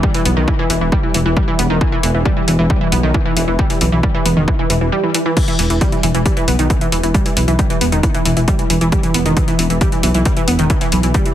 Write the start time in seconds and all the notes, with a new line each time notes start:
0.03 G3, kick
0.14 E3, open hi-hat
0.25 B1 B3, open hi-hat
0.37 B1 D#3
0.48 E3, kick
0.59 E3
0.70 E1 E3, open hi-hat
0.81 E1 E3
0.92 G3, kick
1.03 E3
1.14 E1 E3, open hi-hat
1.26 E1 E3
1.37 G3, kick
1.48 E3
1.59 E1 B3, open hi-hat
1.70 E1 D#3
1.81 E3, kick
1.92 E3
2.03 E1 E3, open hi-hat
2.14 E1 E3
2.25 G3, kick
2.37 E3
2.48 E1 E3, open hi-hat
2.59 E1 E3
2.70 G3, kick
2.81 E3
2.92 B1 B3, open hi-hat
3.03 B1 D#3
3.14 E3, kick
3.26 E3
3.37 E1 E3, open hi-hat
3.48 E1 E3
3.59 G3, kick
3.70 E3, open hi-hat
3.81 B1 E3, open hi-hat
3.92 B1 E3
4.03 G3, kick
4.15 E3
4.26 E1 B3, open hi-hat
4.37 E1 D#3
4.48 E3, kick
4.59 E3
4.70 E1 E3, open hi-hat
4.81 E1 E3
4.92 G3
5.03 E3
5.14 E3, open hi-hat
5.26 E3
5.37 E3, kick, closed hi-hat, crash
5.48 E3, closed hi-hat
5.59 E1 E3, open hi-hat
5.70 E1 E3, closed hi-hat
5.81 G3, kick, closed hi-hat
5.92 E3, closed hi-hat
6.03 E1 E3, open hi-hat
6.15 E1 E3, closed hi-hat
6.26 G3, kick, closed hi-hat
6.37 E3, closed hi-hat
6.48 B1 B3, open hi-hat
6.59 B1 D#3, closed hi-hat
6.70 kick, closed hi-hat
6.81 E3, closed hi-hat
6.92 E1 E3, open hi-hat
7.03 E1 E3, closed hi-hat
7.14 G3, kick, closed hi-hat
7.26 E3, open hi-hat
7.37 B1 E3, open hi-hat
7.48 B1 E3, closed hi-hat
7.59 G3, kick, closed hi-hat
7.70 E3, closed hi-hat
7.81 E1 B3, open hi-hat
7.92 E1 D#3, closed hi-hat
8.03 E3, kick, closed hi-hat
8.14 E3, closed hi-hat
8.26 E1 E3, open hi-hat
8.37 E1 E3, closed hi-hat
8.48 G3, kick, closed hi-hat
8.59 E3, closed hi-hat
8.70 E1 E3, open hi-hat
8.81 E1 E3, closed hi-hat
8.92 G3, kick, closed hi-hat
9.03 E3, closed hi-hat
9.14 E1 B3, open hi-hat
9.26 E1 D#3, closed hi-hat
9.37 E3, kick, closed hi-hat
9.48 E3, closed hi-hat
9.59 E1 E3, open hi-hat
9.70 E1 E3, closed hi-hat
9.81 G3, kick, closed hi-hat
9.92 E3, closed hi-hat
10.03 B1 E3, open hi-hat
10.14 B1 E3, closed hi-hat
10.25 G3, kick, closed hi-hat
10.37 E3, closed hi-hat
10.48 E1 B3, open hi-hat
10.59 E1 D#3, closed hi-hat
10.70 E3, kick, closed hi-hat
10.81 E3, open hi-hat
10.92 B1 E3, open hi-hat
11.03 B1 E3, closed hi-hat
11.14 G3, kick, closed hi-hat
11.26 E3, closed hi-hat